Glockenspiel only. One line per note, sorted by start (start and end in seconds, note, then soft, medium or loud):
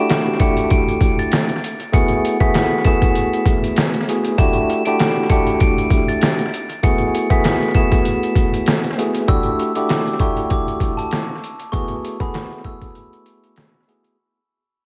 0.40 0.56 C#7 medium
0.71 1.16 D7 medium
1.19 1.46 A6 medium
1.94 2.38 C#7 loud
2.41 2.53 B6 medium
2.85 3.00 E7 medium
4.38 4.83 E7 loud
4.85 4.98 D7 medium
5.30 5.45 C#7 medium
5.61 6.05 D7 medium
6.08 6.36 A6 medium
6.84 7.28 C#7 loud
7.31 7.43 B6 medium
7.75 7.90 E7 medium
9.29 9.73 E6 loud
9.76 9.88 D6 medium
10.20 10.35 C#6 medium
10.51 10.96 D6 medium
10.97 11.25 A5 medium
11.72 12.17 C#6 loud
12.20 12.33 B5 medium
12.65 12.80 E6 medium